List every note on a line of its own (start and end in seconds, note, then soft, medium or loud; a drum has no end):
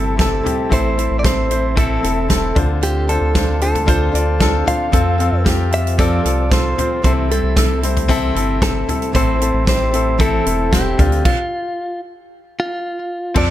0.00 0.41 G1 medium
0.00 0.70 C3 medium
0.00 0.74 C3 medium
0.00 0.16 G3 soft
0.00 2.53 A3 medium
0.00 0.17 C4 medium
0.00 0.17 C4 soft
0.00 0.18 E4 medium
0.00 0.19 E4 medium
0.00 2.53 E4 medium
0.00 0.45 G4 medium
0.00 0.16 A4 medium
0.00 0.18 A4 medium
0.00 0.19 A4 loud
0.00 0.74 C5 medium
0.17 0.44 G3 medium
0.17 0.38 C4 medium
0.17 0.44 C4 medium
0.17 0.39 E4 medium
0.17 0.44 E4 medium
0.17 0.39 A4 medium
0.17 0.42 A4 medium
0.17 kick loud
0.17 snare medium
0.17 closed hi-hat medium
0.21 0.73 A4 medium
0.43 0.71 G3 soft
0.43 0.64 C4 medium
0.43 0.71 C4 soft
0.43 0.65 E4 medium
0.43 0.71 E4 soft
0.43 0.65 G4 medium
0.43 0.71 A4 medium
0.43 closed hi-hat medium
0.43 floor tom medium
0.69 1.08 A1 medium
0.69 1.46 A2 medium
0.69 0.97 A2 medium
0.69 0.98 E3 medium
0.69 0.98 A3 medium
0.69 0.90 C4 medium
0.69 7.00 C4 medium
0.69 0.98 C4 medium
0.69 0.91 E4 medium
0.69 0.98 E4 medium
0.69 0.91 A4 medium
0.69 0.96 A4 medium
0.69 kick medium
0.69 closed hi-hat medium
0.73 1.19 C5 medium
0.96 1.17 C4 medium
0.96 1.24 C4 soft
0.96 1.17 E4 medium
0.96 1.25 E4 medium
0.96 1.24 A4 medium
0.96 1.18 A4 medium
0.96 closed hi-hat medium
1.01 1.22 A3 soft
1.11 1.99 A1 medium
1.19 1.44 C4 medium
1.19 1.25 D5 medium
1.24 1.50 A3 medium
1.24 1.51 C4 medium
1.24 1.44 E4 medium
1.24 1.50 E4 medium
1.24 1.44 A4 medium
1.24 1.49 A4 medium
1.24 1.77 C5 medium
1.24 kick loud
1.24 snare loud
1.24 closed hi-hat loud
1.49 1.70 C4 medium
1.49 1.77 C4 soft
1.49 1.70 E4 medium
1.49 1.77 E4 soft
1.49 1.77 A4 medium
1.49 1.71 C5 medium
1.49 closed hi-hat medium
1.54 1.77 A3 soft
1.76 2.03 A2 medium
1.76 2.04 E3 medium
1.76 2.04 A3 medium
1.76 1.96 C4 medium
1.76 2.04 C4 medium
1.76 1.97 E4 medium
1.76 2.03 E4 medium
1.76 2.86 A4 medium
1.76 1.97 A4 loud
1.76 2.02 A4 loud
1.76 kick medium
1.76 closed hi-hat medium
2.02 2.53 E1 medium
2.02 2.23 C4 medium
2.02 2.29 C4 medium
2.02 2.23 E4 medium
2.02 2.30 E4 medium
2.02 2.30 A4 medium
2.02 2.24 A4 medium
2.02 closed hi-hat medium
2.06 2.27 A3 soft
2.29 2.56 A3 medium
2.29 2.49 C4 medium
2.29 2.56 C4 medium
2.29 2.50 E4 medium
2.29 2.56 E4 medium
2.29 2.50 A4 medium
2.29 2.54 A4 medium
2.29 kick medium
2.29 snare loud
2.29 closed hi-hat medium
2.55 3.18 D2 loud
2.55 4.90 D3 medium
2.55 3.31 D3 medium
2.55 2.82 C4 soft
2.55 2.98 D4 medium
2.55 4.91 F4 medium
2.55 2.98 F4 medium
2.55 2.82 F4 medium
2.55 2.82 A4 medium
2.55 2.99 C5 medium
2.55 kick medium
2.55 closed hi-hat medium
2.55 floor tom medium
2.81 3.08 D3 medium
2.81 3.09 A3 medium
2.81 3.09 C4 medium
2.81 3.08 F4 medium
2.81 3.10 G4 medium
2.81 3.06 A4 medium
2.81 closed hi-hat medium
3.07 3.33 C4 soft
3.07 3.29 D4 medium
3.07 3.34 F4 soft
3.07 3.29 F4 medium
3.07 3.34 A4 medium
3.07 3.61 A4 medium
3.07 3.30 C5 medium
3.07 closed hi-hat medium
3.21 4.10 D2 loud
3.33 3.61 A3 medium
3.33 3.61 C4 medium
3.33 3.55 D4 medium
3.33 3.60 F4 medium
3.33 3.55 F4 medium
3.33 3.58 A4 medium
3.33 3.56 C5 medium
3.33 kick loud
3.33 snare loud
3.33 closed hi-hat medium
3.60 3.86 C4 soft
3.60 3.82 D4 medium
3.60 3.86 F4 soft
3.60 3.82 F4 medium
3.60 3.87 A4 soft
3.60 4.63 A4 medium
3.60 closed hi-hat medium
3.64 3.82 C5 medium
3.75 closed hi-hat medium
3.75 floor tom medium
3.85 4.13 D3 medium
3.85 4.13 A3 medium
3.85 4.14 C4 medium
3.85 4.07 D4 medium
3.85 4.08 F4 medium
3.85 4.12 F4 medium
3.85 4.11 A4 medium
3.85 4.08 C5 loud
3.85 kick loud
3.85 closed hi-hat medium
4.12 4.63 D2 medium
4.12 4.38 C4 soft
4.12 4.34 D4 medium
4.12 4.39 F4 medium
4.12 4.34 F4 medium
4.12 4.39 A4 medium
4.12 4.34 D5 medium
4.12 closed hi-hat medium
4.38 4.66 A3 medium
4.38 4.67 C4 medium
4.38 4.60 D4 medium
4.38 4.60 F4 medium
4.38 4.65 F4 medium
4.38 4.61 A4 medium
4.38 4.63 A4 medium
4.38 kick medium
4.38 snare loud
4.38 closed hi-hat medium
4.64 4.91 C4 soft
4.64 4.86 D4 medium
4.64 4.92 F4 medium
4.64 4.87 F4 medium
4.64 4.92 A4 medium
4.64 4.87 C5 medium
4.64 5.42 F5 medium
4.64 closed hi-hat medium
4.64 floor tom medium
4.91 5.30 F2 medium
4.91 5.19 F3 medium
4.91 7.03 F3 medium
4.91 5.19 A3 medium
4.91 5.13 C4 medium
4.91 5.19 C4 medium
4.91 5.18 F4 medium
4.91 5.13 F4 medium
4.91 5.17 A4 medium
4.91 5.13 A4 medium
4.91 7.02 A4 medium
4.91 kick medium
4.91 closed hi-hat medium
5.18 5.39 C4 medium
5.18 5.44 C4 soft
5.18 5.45 F4 medium
5.18 5.40 F4 medium
5.18 5.45 A4 medium
5.18 5.40 A4 medium
5.18 closed hi-hat medium
5.32 6.21 F2 loud
5.44 5.72 A3 medium
5.44 5.65 C4 medium
5.44 5.72 C4 medium
5.44 5.66 F4 medium
5.44 5.71 F4 medium
5.44 5.66 G4 medium
5.44 5.70 A4 medium
5.44 kick loud
5.44 snare loud
5.44 closed hi-hat medium
5.71 5.92 C4 medium
5.71 5.98 C4 soft
5.71 5.92 F4 medium
5.71 5.98 F4 medium
5.71 5.93 G4 medium
5.71 5.98 A4 soft
5.71 5.98 E5 loud
5.71 closed hi-hat medium
5.87 closed hi-hat medium
5.98 6.25 F3 medium
5.98 6.25 A3 medium
5.98 6.18 C4 loud
5.98 6.25 C4 medium
5.98 6.24 F4 medium
5.98 6.19 F4 medium
5.98 6.22 A4 loud
5.98 6.19 A4 loud
5.98 6.53 D5 medium
5.98 kick loud
5.98 closed hi-hat medium
6.24 6.74 C2 loud
6.24 6.45 C4 medium
6.24 6.49 C4 soft
6.24 6.45 F4 medium
6.24 6.50 F4 medium
6.24 6.51 A4 medium
6.24 6.45 A4 medium
6.24 closed hi-hat medium
6.49 6.77 A3 medium
6.49 6.77 C4 medium
6.49 6.71 C4 medium
6.49 6.76 F4 medium
6.49 6.72 F4 medium
6.49 6.75 A4 medium
6.49 7.03 C5 medium
6.49 kick medium
6.49 snare loud
6.49 closed hi-hat medium
6.53 6.72 A4 medium
6.76 6.97 C4 medium
6.76 7.02 C4 soft
6.76 7.03 F4 medium
6.76 6.98 F4 medium
6.76 7.03 A4 medium
6.76 6.98 C5 medium
6.76 closed hi-hat medium
6.76 floor tom medium
7.02 7.41 C2 medium
7.02 7.29 C3 medium
7.02 9.13 C3 medium
7.02 7.80 C3 medium
7.02 7.30 E3 medium
7.02 7.30 G3 medium
7.02 10.95 A3 medium
7.02 7.30 C4 medium
7.02 7.24 C4 medium
7.02 7.28 E4 medium
7.02 10.95 E4 medium
7.02 7.25 E4 medium
7.02 7.27 A4 medium
7.02 7.12 C5 medium
7.02 kick medium
7.02 closed hi-hat medium
7.06 7.25 A4 medium
7.28 7.54 G3 medium
7.28 7.50 C4 medium
7.28 7.55 C4 medium
7.28 7.56 E4 medium
7.28 7.51 E4 medium
7.28 7.56 A4 medium
7.28 7.80 A4 medium
7.28 7.51 C5 medium
7.28 closed hi-hat medium
7.43 8.31 C2 medium
7.55 7.82 G3 medium
7.55 7.76 C4 medium
7.55 7.82 C4 medium
7.55 7.77 E4 medium
7.55 7.81 E4 medium
7.55 7.77 A4 medium
7.55 7.80 A4 medium
7.55 kick loud
7.55 snare loud
7.55 closed hi-hat loud
7.81 8.07 G3 soft
7.81 8.03 C4 medium
7.81 8.08 C4 soft
7.81 8.08 E4 medium
7.81 8.03 E4 medium
7.81 8.08 A4 medium
7.81 closed hi-hat medium
7.85 8.04 C5 medium
7.97 closed hi-hat medium
7.97 floor tom medium
8.08 8.35 C3 medium
8.08 8.35 E3 medium
8.08 8.35 G3 medium
8.08 8.29 C4 loud
8.08 8.35 C4 medium
8.08 8.34 E4 medium
8.08 8.29 E4 loud
8.08 8.32 A4 loud
8.08 8.30 A4 loud
8.08 kick loud
8.08 closed hi-hat medium
8.34 8.84 G1 medium
8.34 8.59 G3 soft
8.34 8.55 C4 medium
8.34 8.60 C4 medium
8.34 8.61 E4 medium
8.34 8.56 E4 medium
8.34 8.61 A4 medium
8.34 8.56 A4 medium
8.34 closed hi-hat medium
8.60 8.87 G3 medium
8.60 8.88 C4 medium
8.60 8.82 C4 medium
8.60 8.87 E4 medium
8.60 8.82 E4 medium
8.60 9.11 A4 loud
8.60 8.82 A4 medium
8.60 8.85 A4 medium
8.60 kick loud
8.60 snare loud
8.60 closed hi-hat medium
8.87 9.13 G3 soft
8.87 9.08 C4 medium
8.87 9.12 C4 medium
8.87 9.13 E4 medium
8.87 9.09 E4 medium
8.87 9.13 A4 medium
8.87 9.09 A4 medium
8.87 closed hi-hat medium
8.87 floor tom medium
9.02 closed hi-hat soft
9.12 9.52 A1 loud
9.12 9.40 A2 medium
9.12 9.90 A2 medium
9.12 9.40 E3 medium
9.12 9.40 A3 medium
9.12 9.40 C4 medium
9.12 9.34 C4 medium
9.12 11.23 C4 medium
9.12 9.39 E4 loud
9.12 9.35 E4 medium
9.12 9.38 A4 loud
9.12 9.35 A4 medium
9.12 9.64 C5 loud
9.12 kick medium
9.12 closed hi-hat medium
9.39 9.64 A3 soft
9.39 9.61 C4 medium
9.39 9.65 C4 medium
9.39 9.66 E4 medium
9.39 9.61 E4 medium
9.39 9.66 A4 medium
9.39 9.62 A4 medium
9.39 closed hi-hat medium
9.54 10.42 A1 loud
9.65 9.92 A3 medium
9.65 9.92 C4 medium
9.65 9.87 C4 medium
9.65 9.91 E4 medium
9.65 9.88 E4 medium
9.65 9.90 A4 medium
9.65 kick loud
9.65 snare loud
9.65 closed hi-hat loud
9.69 9.88 G4 medium
9.69 10.20 C5 loud
9.91 10.18 A3 medium
9.91 10.13 C4 medium
9.91 10.18 C4 medium
9.91 10.18 E4 medium
9.91 10.14 E4 medium
9.91 10.19 A4 medium
9.91 10.14 A4 medium
9.91 closed hi-hat medium
10.18 10.45 A2 medium
10.18 10.46 E3 loud
10.18 10.46 A3 medium
10.18 10.39 C4 loud
10.18 10.45 C4 loud
10.18 10.45 E4 medium
10.18 10.40 E4 medium
10.18 10.43 A4 medium
10.18 10.75 A4 loud
10.18 10.40 A4 loud
10.18 kick loud
10.18 closed hi-hat medium
10.44 10.95 E1 medium
10.44 10.70 A3 soft
10.44 10.66 C4 medium
10.44 10.72 C4 medium
10.44 10.72 E4 medium
10.44 10.66 E4 medium
10.44 10.72 A4 medium
10.44 10.66 A4 medium
10.44 closed hi-hat medium
10.71 10.98 A3 medium
10.71 10.92 C4 medium
10.71 10.99 C4 medium
10.71 10.92 E4 medium
10.71 10.99 E4 medium
10.71 11.25 G4 medium
10.71 10.97 A4 medium
10.71 10.93 C5 medium
10.71 kick loud
10.71 snare loud
10.71 closed hi-hat medium
10.97 11.23 D2 loud
10.97 11.25 D3 medium
10.97 11.19 C4 medium
10.97 11.26 C4 soft
10.97 11.20 D4 medium
10.97 11.24 F4 medium
10.97 11.25 F4 medium
10.97 11.20 F4 medium
10.97 11.25 A4 medium
10.97 kick loud
10.97 closed hi-hat medium
10.97 floor tom medium
11.12 closed hi-hat soft
11.25 12.00 F4 medium
11.25 kick loud
11.25 crash medium
12.60 13.39 F4 loud
13.34 13.50 F2 loud
13.34 13.50 F3 medium
13.34 13.50 A3 medium
13.34 13.50 C4 medium
13.34 13.50 F4 medium
13.34 13.50 A4 medium
13.34 13.50 A4 loud
13.34 13.50 D5 loud
13.34 kick loud
13.34 crash medium